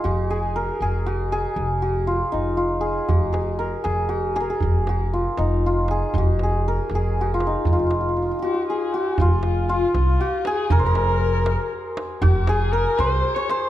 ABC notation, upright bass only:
X:1
M:6/8
L:1/8
Q:3/8=79
K:none
V:1 name="Upright bass" clef=bass
F,,,3 F,,,3 | F,,,3 F,,,3 | F,,,3 F,,,3 | F,,,3 F,,,3 |
F,,,3 F,,,3 | F,,,3 z3 | F,,,3 C,, z2 | F,,,4 z2 |
F,,,3 C,, z2 |]